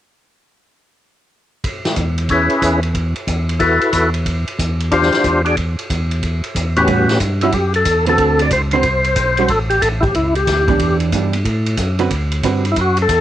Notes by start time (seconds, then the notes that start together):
1.64 kick, ride
1.85 snare, ride
1.96 E2, kick, hi-hat pedal, ride
2.18 ride
2.29 C#4 E4 G#4 B4, kick, ride
2.50 ride
2.62 E2, kick, hi-hat pedal, ride
2.83 ride
2.95 kick, ride
3.16 ride
3.27 E2, kick, hi-hat pedal, ride
3.49 ride
3.59 E4 F#4 A4 B4, kick, ride
3.81 ride
3.92 E2, kick, hi-hat pedal, ride
4.14 ride
4.26 kick, ride
4.48 ride
4.59 E2, kick, hi-hat pedal, ride
4.80 ride
4.92 D4 F4 G4 C5, kick, ride
5.02 snare
5.12 snare, ride
5.24 E2, kick, hi-hat pedal, ride
5.45 D4 F#4 G#4 D5, ride
5.57 kick, ride
5.79 ride
5.90 E2, kick, hi-hat pedal, ride
6.11 ride
6.22 kick, ride
6.44 ride
6.55 E2, kick, hi-hat pedal, ride
6.76 A2 C#4 F#4 G4 B4, ride
6.88 A2 G3 C#4 F#4, kick, ride
7.09 snare, ride
7.20 G2, kick, hi-hat pedal, ride
7.41 G3 C#4 E4 F#4, ride
7.52 F#2 G4, kick, ride
7.74 A4, ride
7.85 E2, kick, hi-hat pedal, ride
8.06 D3 C4 F#4 A4 B4, ride
8.18 D2, kick, ride
8.39 D5, ride
8.51 C#2 C5, kick, hi-hat pedal, ride
8.71 D3 C4 F#4 B4 C5, ride
8.83 C2, kick, ride
9.04 ride
9.16 B1, kick, hi-hat pedal, ride
9.37 G3 C#4 F#4, ride
9.48 A1 A4, kick, ride
9.70 G4, ride
9.81 A1 A4, kick, hi-hat pedal, ride
10.01 E4 G4, kick, ride
10.14 C#2 E4, kick, ride
10.35 G4, ride
10.47 D2, kick, snare, hi-hat pedal, ride
10.68 E3 B3 D4 G4, kick, ride
10.79 E2, kick, ride
11.00 ride
11.12 G2 E3 B3 D4 G4, kick, hi-hat pedal, ride
11.33 ride
11.45 A2, kick, ride
11.66 ride
11.77 F#2, kick, hi-hat pedal, ride
11.99 D3 C4 F#4 B4, ride
12.10 D2, kick, ride
12.32 ride
12.43 G2 D3 C4 F#4 B4, kick, hi-hat pedal, ride
12.65 ride
12.72 E4
12.76 F#2, kick, ride
12.81 F#4
12.97 ride
13.02 A4
13.08 E2, kick, hi-hat pedal, ride